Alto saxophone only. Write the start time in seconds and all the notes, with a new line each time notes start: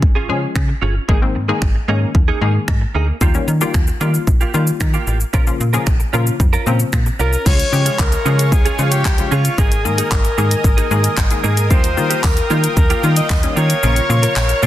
7.20 A#4
7.46 C#5
7.99 A#4
8.52 G#4
8.92 G4
9.32 F4
9.58 G#4
9.85 A#4
11.44 G#4
11.70 C5
12.24 A#4
12.77 A#4
13.17 D#5
13.56 C#5